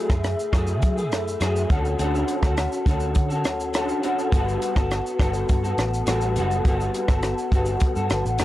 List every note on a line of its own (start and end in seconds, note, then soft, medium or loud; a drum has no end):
0.09 0.33 F#2 loud
0.09 0.52 A3 soft
0.09 0.52 E4 medium
0.09 0.53 G#4 medium
0.09 kick loud
0.09 cross-stick medium
0.09 shaker medium
0.24 cross-stick medium
0.24 closed hi-hat medium
0.24 shaker medium
0.39 shaker medium
0.52 0.83 F#2 medium
0.52 0.97 F#3 medium
0.52 0.97 A3 medium
0.52 0.96 E4 medium
0.52 0.95 G#4 medium
0.52 kick medium
0.52 cross-stick loud
0.52 closed hi-hat medium
0.52 shaker medium
0.67 shaker medium
0.82 1.12 F#3 medium
0.82 kick medium
0.82 closed hi-hat medium
0.82 shaker medium
0.96 1.40 A3 medium
0.96 1.41 E4 medium
0.96 1.40 G#4 medium
0.96 shaker medium
1.12 1.35 F#2 medium
1.12 cross-stick medium
1.12 closed hi-hat medium
1.12 shaker medium
1.28 shaker medium
1.40 1.64 F#2 medium
1.40 1.70 F#3 medium
1.40 1.70 A3 medium
1.40 1.70 E4 medium
1.40 1.71 G#4 medium
1.40 cross-stick medium
1.40 closed hi-hat medium
1.40 shaker medium
1.56 shaker medium
1.69 1.93 D2 loud
1.69 1.97 D3 medium
1.69 1.98 C#4 medium
1.69 1.98 F#4 medium
1.69 1.99 A4 medium
1.69 kick loud
1.69 closed hi-hat soft
1.69 shaker soft
1.85 shaker soft
1.98 2.23 D2 loud
1.98 2.42 D3 medium
1.98 2.43 C#4 medium
1.98 2.43 F#4 medium
1.98 2.41 A4 medium
1.98 closed hi-hat medium
1.98 shaker medium
2.15 shaker soft
2.28 closed hi-hat medium
2.28 shaker medium
2.42 2.66 D2 loud
2.42 2.85 C#4 medium
2.42 2.86 F#4 medium
2.42 2.86 A4 medium
2.42 kick loud
2.42 cross-stick medium
2.42 shaker medium
2.57 cross-stick medium
2.57 closed hi-hat medium
2.57 shaker medium
2.72 shaker medium
2.85 3.16 D2 medium
2.85 3.30 D3 medium
2.85 3.30 C#4 medium
2.85 3.29 F#4 medium
2.85 3.27 A4 medium
2.85 kick medium
2.85 closed hi-hat medium
2.85 shaker medium
3.00 shaker medium
3.15 3.45 D3 loud
3.15 kick medium
3.15 closed hi-hat medium
3.15 shaker medium
3.29 3.73 C#4 medium
3.29 3.74 F#4 medium
3.29 3.73 A4 medium
3.29 shaker medium
3.45 3.92 D2 medium
3.45 cross-stick medium
3.45 closed hi-hat medium
3.45 shaker medium
3.60 shaker medium
3.73 4.01 D3 medium
3.73 4.02 C#4 medium
3.73 4.03 F#4 medium
3.73 4.03 A4 medium
3.73 cross-stick loud
3.73 closed hi-hat medium
3.73 shaker medium
3.89 shaker medium
4.02 4.32 D3 medium
4.02 4.31 C#4 medium
4.02 4.31 F#4 medium
4.02 4.32 A4 medium
4.02 closed hi-hat soft
4.02 shaker soft
4.19 shaker soft
4.31 4.56 G1 loud
4.31 4.75 G3 medium
4.31 4.76 B3 medium
4.31 4.75 F#4 medium
4.31 4.74 A4 medium
4.31 kick loud
4.31 closed hi-hat medium
4.31 shaker medium
4.48 shaker soft
4.62 closed hi-hat medium
4.62 shaker medium
4.75 4.99 G1 medium
4.75 5.18 B3 medium
4.75 5.19 F#4 medium
4.75 5.19 A4 medium
4.75 kick medium
4.75 cross-stick loud
4.75 shaker medium
4.91 cross-stick medium
4.91 closed hi-hat medium
4.91 shaker medium
5.06 shaker medium
5.18 5.43 G1 loud
5.18 5.63 G3 medium
5.18 5.63 B3 medium
5.18 5.62 F#4 medium
5.18 5.62 A4 medium
5.18 kick medium
5.18 cross-stick loud
5.18 closed hi-hat medium
5.18 shaker medium
5.34 shaker medium
5.49 5.73 G2 loud
5.49 kick medium
5.49 closed hi-hat medium
5.49 shaker medium
5.63 6.06 B3 soft
5.63 6.07 F#4 medium
5.63 6.07 A4 medium
5.63 shaker medium
5.78 6.01 A1 loud
5.78 cross-stick medium
5.78 closed hi-hat medium
5.78 shaker medium
5.94 shaker medium
6.06 6.38 A1 loud
6.06 6.34 G3 medium
6.06 6.35 B3 medium
6.06 6.36 F#4 medium
6.06 6.36 A4 medium
6.06 cross-stick medium
6.06 closed hi-hat medium
6.06 shaker medium
6.21 shaker medium
6.35 6.59 F#1 medium
6.35 6.64 G3 medium
6.35 6.64 B3 medium
6.35 6.65 F#4 medium
6.35 6.65 A4 medium
6.35 closed hi-hat medium
6.35 shaker soft
6.51 shaker medium
6.65 6.88 G1 loud
6.65 7.09 G3 medium
6.65 7.09 B3 medium
6.65 7.08 F#4 medium
6.65 7.07 A4 medium
6.65 kick loud
6.65 closed hi-hat medium
6.65 shaker medium
6.80 shaker soft
6.94 closed hi-hat medium
6.94 shaker medium
7.08 7.32 G1 medium
7.08 7.51 B3 soft
7.08 7.52 F#4 medium
7.08 7.52 A4 medium
7.08 kick loud
7.08 cross-stick medium
7.08 shaker medium
7.23 cross-stick medium
7.23 closed hi-hat medium
7.23 shaker medium
7.38 shaker medium
7.51 7.75 G1 loud
7.51 7.96 G3 medium
7.51 7.96 B3 medium
7.51 7.96 F#4 medium
7.51 7.94 A4 medium
7.51 kick loud
7.51 closed hi-hat medium
7.51 shaker medium
7.66 shaker medium
7.80 kick medium
7.80 closed hi-hat medium
7.80 shaker medium
7.96 8.08 G2 medium
7.96 8.38 B3 soft
7.96 8.39 F#4 soft
7.96 8.40 A4 medium
7.96 shaker medium
8.10 8.22 G1 medium
8.10 cross-stick medium
8.10 closed hi-hat medium
8.10 shaker medium
8.25 8.37 A1 medium
8.25 shaker medium
8.39 8.45 F#1 loud
8.39 8.45 G3 medium
8.39 8.45 B3 medium
8.39 8.45 F#4 medium
8.39 8.45 A4 medium
8.39 cross-stick medium
8.39 closed hi-hat medium
8.39 shaker medium